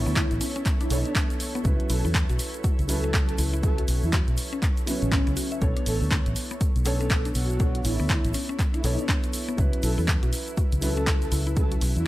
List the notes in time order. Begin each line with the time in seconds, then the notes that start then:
Already playing: B3 D4 E4 A4 C#5, downlifter
0.06 D2 B3, shaker
0.16 kick, clap, closed hi-hat, shaker
0.31 A1, closed hi-hat, shaker
0.41 C#4, open hi-hat, shaker
0.56 C#4, closed hi-hat, shaker
0.66 kick, clap, closed hi-hat, shaker
0.81 D4 E4, closed hi-hat, shaker
0.90 B1 B3 D4 A4 C#5, open hi-hat, shaker
1.05 closed hi-hat, shaker
1.15 D4, kick, clap, closed hi-hat, shaker
1.30 closed hi-hat, shaker
1.40 open hi-hat, shaker
1.55 B3, closed hi-hat, shaker
1.64 C#2 F#3 C#4 E4 B4, kick, closed hi-hat, shaker
1.80 closed hi-hat
1.90 B1 E4 A4, open hi-hat, shaker
2.05 E2 E4, shaker
2.14 kick, clap, closed hi-hat, shaker
2.29 B1 F#4, closed hi-hat, shaker
2.39 open hi-hat, shaker
2.54 closed hi-hat, shaker
2.64 F#4, kick, closed hi-hat, shaker
2.79 C#2, closed hi-hat, shaker
2.88 F#3 C#4 E4 A4 B4, open hi-hat, shaker
3.03 C#4, closed hi-hat, shaker
3.14 kick, clap, closed hi-hat, shaker
3.28 A4, closed hi-hat, shaker
3.38 C#2 E4, open hi-hat, shaker
3.53 E4, shaker
3.62 F#3 C#4 E4 A4 B4, kick, closed hi-hat, shaker
3.78 F#4, closed hi-hat
3.88 B1, open hi-hat, shaker
4.02 E2 E4, shaker
4.13 F#4, kick, clap, closed hi-hat, shaker
4.28 B1, closed hi-hat, shaker
4.37 open hi-hat, shaker
4.52 C#4, closed hi-hat, shaker
4.62 kick, clap, closed hi-hat, shaker
4.77 closed hi-hat, shaker
4.86 F#3 B3 C#4 E4 B4, open hi-hat, shaker
5.02 A1, closed hi-hat, shaker
5.12 B3, kick, clap, closed hi-hat, shaker
5.27 C#2 B3, closed hi-hat, shaker
5.37 F#4, open hi-hat, shaker
5.51 E5, closed hi-hat, shaker
5.61 B1 B3 D4 E4 A4 C#5, kick, closed hi-hat, shaker
5.77 D4, closed hi-hat
5.86 A1 A4, open hi-hat, shaker
6.01 D2, shaker
6.11 D4, kick, clap, closed hi-hat, shaker
6.26 A1, closed hi-hat, shaker
6.36 open hi-hat, shaker
6.51 B3, closed hi-hat, shaker
6.61 kick, closed hi-hat, shaker
6.76 B1, closed hi-hat, shaker
6.85 B3 C#4 D4 A4 C#5, open hi-hat, shaker
7.00 C#4, closed hi-hat, shaker
7.10 kick, clap, closed hi-hat, shaker
7.25 D4, closed hi-hat, shaker
7.35 B1 F#4, open hi-hat, shaker
7.50 closed hi-hat, shaker
7.59 B3 D4 A4 C#5, kick, closed hi-hat, shaker
7.75 closed hi-hat
7.85 A1 E4, open hi-hat, shaker
7.99 D2 B3, shaker
8.09 kick, clap, closed hi-hat, shaker
8.25 A1, closed hi-hat, shaker
8.34 C#4, open hi-hat, shaker
8.49 C#4, closed hi-hat, shaker
8.59 kick, clap, closed hi-hat, shaker
8.74 D4 E4, closed hi-hat, shaker
8.83 B1 B3 D4 A4 C#5, open hi-hat, shaker
8.98 closed hi-hat, shaker
9.09 D4, kick, clap, closed hi-hat, shaker
9.23 closed hi-hat, shaker
9.33 open hi-hat, shaker
9.48 B3, closed hi-hat, shaker
9.57 C#2 F#3 C#4 E4 B4, kick, closed hi-hat, shaker
9.73 closed hi-hat
9.83 B1 E4 A4, open hi-hat, shaker
9.98 E2 E4, shaker
10.08 kick, clap, closed hi-hat, shaker
10.23 B1 F#4, closed hi-hat, shaker
10.33 open hi-hat, shaker
10.47 shaker
10.57 F#4, kick, closed hi-hat, shaker
10.72 C#2, closed hi-hat, shaker
10.81 F#3 C#4 E4 A4 B4, open hi-hat, shaker
10.97 C#4, closed hi-hat, shaker
11.07 kick, clap, closed hi-hat, shaker
11.22 A4, closed hi-hat, shaker
11.32 C#2 E4, open hi-hat, shaker
11.47 E4, closed hi-hat, shaker
11.56 F#3 C#4 E4 A4 B4, kick, closed hi-hat, shaker
11.71 F#4, closed hi-hat, shaker
11.81 B1, open hi-hat, shaker
11.96 E2 E4, closed hi-hat, shaker